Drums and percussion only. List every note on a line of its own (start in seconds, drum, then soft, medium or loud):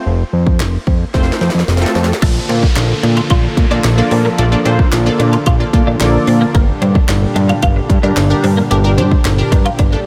0.47 kick medium
0.60 snare medium
0.60 clap loud
0.87 kick medium
1.14 kick medium
1.14 snare medium
1.23 snare soft
1.32 snare medium
1.41 snare medium
1.50 snare medium
1.59 snare medium
1.68 snare medium
1.77 snare medium
1.86 snare loud
1.95 snare medium
2.04 snare medium
2.13 snare medium
2.22 kick loud
2.22 closed hi-hat loud
2.22 crash loud
2.49 closed hi-hat medium
2.63 kick loud
2.76 snare medium
2.76 clap loud
2.76 closed hi-hat medium
3.03 closed hi-hat medium
3.17 closed hi-hat medium
3.30 kick medium
3.30 closed hi-hat medium
3.57 kick medium
3.57 closed hi-hat medium
3.84 snare loud
3.84 clap loud
3.84 closed hi-hat medium
4.11 open hi-hat medium
4.38 closed hi-hat loud
4.66 closed hi-hat medium
4.79 kick medium
4.92 snare medium
4.92 clap loud
4.92 closed hi-hat medium
5.20 closed hi-hat medium
5.33 closed hi-hat medium
5.46 kick medium
5.46 closed hi-hat loud
5.73 kick medium
5.73 closed hi-hat medium
6.00 snare medium
6.00 clap loud
6.00 closed hi-hat loud
6.27 open hi-hat medium
6.55 kick loud
6.55 closed hi-hat loud
6.82 closed hi-hat medium
6.95 kick loud
7.09 snare medium
7.09 clap loud
7.09 closed hi-hat medium
7.36 closed hi-hat medium
7.49 closed hi-hat medium
7.62 kick medium
7.62 closed hi-hat medium
7.90 kick medium
7.90 closed hi-hat medium
8.17 snare loud
8.17 clap loud
8.17 closed hi-hat loud
8.44 open hi-hat medium
8.71 closed hi-hat loud
8.98 closed hi-hat medium
9.12 kick medium
9.25 snare medium
9.25 clap loud
9.25 closed hi-hat medium
9.52 kick medium
9.52 closed hi-hat medium
9.66 closed hi-hat medium
9.79 kick medium
9.79 closed hi-hat medium